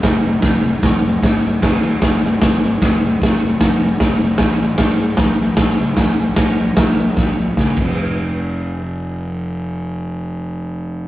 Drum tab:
CC |--------|x-------|--------|--------|
HH |o-o-o-o-|--o-o-o-|o-o-o-o-|o-o-o-o-|
SD |o-o-o-o-|o-o-o-o-|o-o-o-o-|o-o-o-o-|
BD |o-o-o-o-|o-o-o-o-|o-o-o-o-|o-o-o-o-|

CC |-------x|--------|--------|
HH |o-o-----|--------|--------|
SD |o-o-o-o-|--------|--------|
BD |o-o-o-oo|--------|--------|